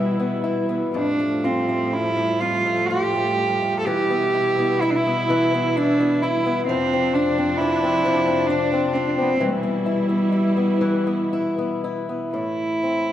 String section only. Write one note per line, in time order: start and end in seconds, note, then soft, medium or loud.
0.00 0.92 B2 medium
0.00 6.65 G3 medium
0.00 0.92 E4 medium
0.96 3.85 A2 medium
0.96 3.84 F3 medium
3.87 6.67 B2 medium
3.87 6.68 E4 medium
6.68 9.36 F2 medium
6.68 9.36 C3 medium
6.68 9.36 F3 medium
6.68 9.36 D4 medium
9.39 12.30 B2 medium
9.39 12.30 G3 medium
9.39 12.30 E4 medium